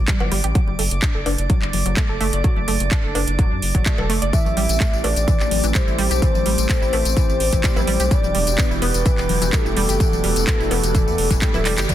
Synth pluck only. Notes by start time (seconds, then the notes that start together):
0.08 G3
0.20 F#4
0.32 G3
0.44 G4
0.55 F#3
0.79 A3
1.02 D4
1.15 A4
1.26 D4
1.50 F#3
1.86 F#3
1.97 A3
2.09 A4
2.21 A3
2.33 D5
2.44 F#3
2.68 A3
2.91 D4
3.04 A4
3.15 D4
3.39 F#3
3.75 F#3
3.86 A3
3.98 A4
4.10 A3
4.22 D5
4.33 E3
4.57 G3
4.80 A3
4.93 E4
5.04 A3
5.28 E3
5.64 E3
5.75 G3
5.87 E4
5.99 G3
6.11 G4
6.22 E3
6.46 G3
6.69 A3
6.82 E4
6.93 A3
7.17 E3
7.53 E3
7.64 G3
7.76 E4
7.87 G3
8.00 G4
8.11 E3
8.35 G3
8.58 B3
8.71 E4
8.82 B3
9.06 E3
9.42 E3
9.53 G3
9.65 E4
9.77 G3
9.89 G4
10.00 E3
10.24 G3
10.47 B3
10.60 E4
10.71 B3
10.95 E3
11.31 E3
11.42 G3
11.54 E4
11.65 G3
11.78 G4
11.89 F#3